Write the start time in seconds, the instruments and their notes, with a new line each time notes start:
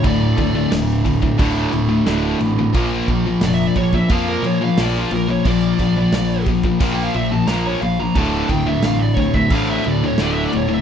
0.04 picked electric bass D1, distorted electric guitar D2 A2, overdriven electric guitar D3, lead electric guitar D5, kick, crash
0.37 picked electric bass D1, distorted electric guitar D2 A2, kick, crash
0.55 distorted electric guitar D2 A2
0.72 picked electric bass D1, distorted electric guitar D2 A2, snare, crash
1.04 distorted electric guitar D2 A2, kick, crash
1.22 distorted electric guitar D2 A2, kick
1.38 picked electric bass D1, distorted electric guitar D2 A2 D3, kick, crash
1.72 picked electric bass D1, distorted electric guitar D2 A2, crash
1.89 distorted electric guitar D2 A2
2.06 picked electric bass D1, distorted electric guitar D2 A2 D3, snare, crash
2.39 picked electric bass A1, distorted electric guitar D2 A2, crash
2.59 distorted electric guitar D2 A2
2.74 picked electric bass A#1, distorted electric guitar A#2 F3 A#3, kick, crash
3.08 picked electric bass A#1, distorted electric guitar A#2 F3, kick, crash
3.26 distorted electric guitar A#2 F3
3.41 picked electric bass F1, distorted electric guitar A#2 F3, snare, crash
3.45 lead electric guitar D5
3.54 lead electric guitar E5
3.67 lead electric guitar D5
3.76 picked electric bass A#1, distorted electric guitar A#2 F3, lead electric guitar C#5, kick, crash
3.93 distorted electric guitar A#2 F3, lead electric guitar E5, kick
4.09 picked electric bass F2, distorted electric guitar A#2 F3 A#3, lead electric guitar F5, kick, crash
4.29 lead electric guitar A#4
4.43 picked electric bass A#2, distorted electric guitar A#2 F3, lead electric guitar C#5, crash
4.61 distorted electric guitar A#2 F3, lead electric guitar F5
4.77 picked electric bass A#1, distorted electric guitar A#2 F3 A#3, lead electric guitar D5, snare, crash
4.96 lead electric guitar F4
5.11 picked electric bass A#1, distorted electric guitar A#2 F3, lead electric guitar A#4, crash
5.29 distorted electric guitar A#2 F3, lead electric guitar C#5
5.45 picked electric bass A#1, distorted electric guitar A#2 F3, overdriven electric guitar A#3, lead electric guitar D5, kick, crash
5.79 picked electric bass A#1, distorted electric guitar A#2 F3, kick, crash
5.97 distorted electric guitar A#2 F3
6.12 picked electric bass A#1, distorted electric guitar A#2 F3, snare, crash
6.46 distorted electric guitar A#2 F3, kick, crash
6.63 distorted electric guitar A#2 F3, kick
6.80 picked electric bass A#1, distorted electric guitar A#2 F3 A#3, kick, crash
6.93 lead electric guitar G5
7.04 lead electric guitar F5
7.14 picked electric bass A#1, distorted electric guitar A#2 F3, lead electric guitar E5, crash
7.31 distorted electric guitar A#2 F3, lead electric guitar A5
7.47 picked electric bass A#1, distorted electric guitar A#2 F3 A#3, lead electric guitar A#5, snare, crash
7.66 lead electric guitar C#5
7.81 picked electric bass A#1, distorted electric guitar A#2 F3, lead electric guitar F5, crash
7.99 distorted electric guitar A#2 F3, lead electric guitar A#5
8.15 picked electric bass D1, distorted electric guitar D2 A2 D3, lead electric guitar A5, kick, crash
8.49 picked electric bass D1, distorted electric guitar D2 A2, lead electric guitar G5, kick, crash
8.67 distorted electric guitar D2 A2, lead electric guitar E5
8.82 picked electric bass A1, distorted electric guitar D2 A2, lead electric guitar F5, snare, crash
8.99 lead electric guitar D5
9.15 picked electric bass D1, distorted electric guitar D2 A2, lead electric guitar C#5, kick, crash
9.34 distorted electric guitar D2 A2, lead electric guitar E5, kick
9.50 picked electric bass A1, distorted electric guitar D2 A2 D3, lead electric guitar F5, kick, crash
9.71 lead electric guitar E5
9.84 distorted electric guitar D2 A2, picked electric bass D2, crash
9.89 lead electric guitar D5
10.03 distorted electric guitar D2 A2, lead electric guitar C#5
10.18 picked electric bass D1, distorted electric guitar D2 A2 D3, lead electric guitar D5, snare, crash
10.33 lead electric guitar E5
10.45 lead electric guitar D5
10.51 picked electric bass D1, distorted electric guitar D2 A2, crash
10.57 lead electric guitar C#5
10.68 distorted electric guitar D2 A2
10.74 lead electric guitar E5